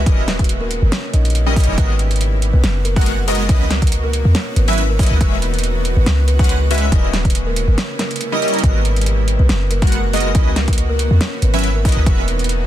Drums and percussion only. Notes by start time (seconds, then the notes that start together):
0.06 kick, closed hi-hat
0.28 snare, closed hi-hat
0.39 kick, closed hi-hat
0.44 closed hi-hat
0.49 closed hi-hat
0.71 closed hi-hat
0.92 snare, closed hi-hat
1.14 closed hi-hat
1.25 closed hi-hat
1.30 closed hi-hat
1.35 closed hi-hat
1.56 kick, closed hi-hat, open hi-hat
1.64 closed hi-hat
1.78 kick, closed hi-hat
1.99 closed hi-hat
2.11 closed hi-hat
2.16 closed hi-hat
2.21 closed hi-hat
2.42 closed hi-hat
2.64 snare, closed hi-hat
2.85 closed hi-hat
2.96 kick, closed hi-hat
3.01 closed hi-hat
3.06 closed hi-hat
3.28 closed hi-hat, open hi-hat
3.35 closed hi-hat
3.49 kick, closed hi-hat
3.71 snare, closed hi-hat
3.82 kick, closed hi-hat
3.87 closed hi-hat
3.92 closed hi-hat
4.13 closed hi-hat
4.35 snare, closed hi-hat
4.56 closed hi-hat
4.68 closed hi-hat
4.73 closed hi-hat
4.78 closed hi-hat
4.99 kick, closed hi-hat, open hi-hat
5.06 closed hi-hat
5.21 kick, closed hi-hat
5.42 closed hi-hat
5.54 closed hi-hat
5.59 closed hi-hat
5.64 closed hi-hat
5.85 closed hi-hat
6.06 snare, closed hi-hat
6.28 closed hi-hat
6.39 kick, closed hi-hat
6.44 closed hi-hat
6.49 closed hi-hat
6.71 closed hi-hat, open hi-hat
6.78 closed hi-hat
6.92 kick, closed hi-hat
7.13 snare, closed hi-hat
7.25 kick, closed hi-hat
7.30 closed hi-hat
7.35 closed hi-hat
7.56 closed hi-hat
7.78 snare, closed hi-hat
7.99 snare, closed hi-hat
8.11 closed hi-hat
8.16 closed hi-hat
8.21 closed hi-hat
8.42 closed hi-hat
8.48 closed hi-hat
8.54 closed hi-hat
8.59 closed hi-hat
8.63 kick, closed hi-hat
8.85 closed hi-hat
8.96 closed hi-hat
9.01 closed hi-hat
9.06 closed hi-hat
9.28 closed hi-hat
9.49 snare, closed hi-hat
9.71 closed hi-hat
9.82 kick, closed hi-hat
9.87 closed hi-hat
9.92 closed hi-hat
10.13 closed hi-hat, open hi-hat
10.20 closed hi-hat
10.35 kick, closed hi-hat
10.56 snare, closed hi-hat
10.68 kick, closed hi-hat
10.73 closed hi-hat
10.78 closed hi-hat
10.99 closed hi-hat
11.21 snare, closed hi-hat
11.42 closed hi-hat
11.54 closed hi-hat
11.59 closed hi-hat
11.64 closed hi-hat
11.85 kick, closed hi-hat, open hi-hat
11.92 closed hi-hat
12.06 kick, closed hi-hat
12.28 closed hi-hat
12.39 closed hi-hat
12.44 closed hi-hat
12.49 closed hi-hat